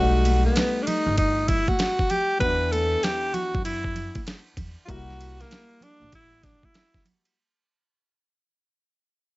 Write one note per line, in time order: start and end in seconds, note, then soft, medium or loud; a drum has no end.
0.00 0.47 B1 loud
0.00 2.36 G3 medium
0.00 2.37 A3 medium
0.00 2.41 D#4 medium
0.00 0.42 F#4 medium
0.00 2.38 F#5 medium
0.15 shaker soft
0.25 ride medium
0.25 high conga soft
0.25 shaker soft
0.45 0.84 B3 medium
0.45 shaker soft
0.56 snare loud
0.56 hi-hat pedal medium
0.56 ride medium
0.56 shaker medium
0.76 shaker soft
0.82 0.88 D4 medium
0.87 1.17 D#4 medium
0.87 ride medium
0.87 low conga medium
0.87 shaker soft
1.07 1.59 G1 medium
1.07 shaker soft
1.18 1.50 D#4 medium
1.18 kick medium
1.18 ride medium
1.18 shaker medium
1.38 shaker soft
1.48 1.70 E4 medium
1.48 kick medium
1.48 ride medium
1.48 low conga medium
1.48 shaker soft
1.68 2.13 F#4 loud
1.68 kick medium
1.68 ride soft
1.68 high conga medium
1.68 shaker soft
1.79 snare loud
1.79 hi-hat pedal soft
1.79 ride medium
1.79 shaker medium
1.99 kick medium
1.99 shaker soft
2.10 2.40 G4 loud
2.10 ride medium
2.10 low conga medium
2.10 shaker soft
2.30 shaker soft
2.39 2.94 E2 loud
2.39 2.48 F#3 medium
2.39 4.84 B3 medium
2.39 4.84 D4 medium
2.39 2.74 B4 loud
2.39 4.85 F#5 medium
2.39 kick loud
2.39 ride medium
2.39 shaker medium
2.46 4.87 E3 medium
2.62 shaker soft
2.72 3.05 A4 loud
2.72 ride medium
2.72 high conga soft
2.72 shaker medium
2.92 shaker soft
3.03 3.36 G4 loud
3.03 snare loud
3.03 hi-hat pedal medium
3.03 ride medium
3.03 shaker medium
3.23 shaker soft
3.34 3.64 F#4 medium
3.34 ride soft
3.34 low conga medium
3.34 shaker soft
3.53 4.07 F#2 medium
3.53 kick loud
3.53 shaker soft
3.65 4.23 E4 medium
3.65 ride medium
3.65 shaker medium
3.84 kick medium
3.84 shaker soft
3.96 ride medium
3.96 low conga medium
3.96 shaker soft
4.15 kick medium
4.15 ride soft
4.15 high conga medium
4.15 shaker soft
4.27 snare loud
4.27 hi-hat pedal medium
4.27 ride medium
4.27 shaker medium
4.47 shaker soft
4.57 4.74 E2 medium
4.57 kick medium
4.57 ride medium
4.57 low conga medium
4.57 shaker soft
4.78 shaker soft
4.86 5.42 C2 loud
4.86 7.31 G3 medium
4.86 7.31 A#3 medium
4.86 7.32 E4 medium
4.86 4.92 F4 medium
4.86 kick loud
4.86 ride medium
4.86 shaker medium
4.90 7.33 F#4 medium
4.90 5.43 F#4 loud
5.08 snare soft
5.08 shaker soft
5.19 ride medium
5.19 shaker soft
5.38 5.85 A#3 medium
5.38 ride soft
5.38 shaker soft
5.42 snare soft
5.50 snare loud
5.50 hi-hat pedal medium
5.50 ride medium
5.50 high conga medium
5.50 shaker medium
5.69 shaker soft
5.81 6.13 D4 medium
5.81 ride medium
5.81 low conga medium
5.81 shaker soft
6.00 6.54 A1 medium
6.00 high conga medium
6.00 shaker soft
6.12 6.46 E4 medium
6.12 kick medium
6.12 ride medium
6.12 high conga soft
6.12 shaker medium
6.32 shaker soft
6.43 6.66 D4 medium
6.43 kick medium
6.43 snare soft
6.43 ride medium
6.43 low conga medium
6.43 shaker soft
6.62 7.06 E4 medium
6.62 kick medium
6.62 high conga medium
6.62 shaker soft
6.73 snare loud
6.73 hi-hat pedal soft
6.73 ride medium
6.73 shaker medium
6.94 kick medium
6.94 snare soft
6.94 shaker medium
7.05 ride medium
7.05 low conga medium
7.05 shaker soft
7.25 ride soft